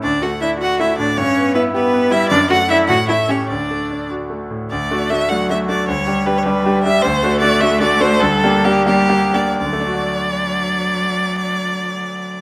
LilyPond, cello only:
\new Staff \with { instrumentName = "Cello" } { \time 6/8 \key d \major \tempo 4. = 102 d'8 fis'8 e'8 fis'8 e'8 d'8 | cis'4 b8 b4 e'8 | d'8 fis'8 e'8 fis'8 e'8 cis'8 | d'4. r4. |
a4. fis4. | g2. | a2. | g4. g4 r8 |
fis2.~ | fis2. | }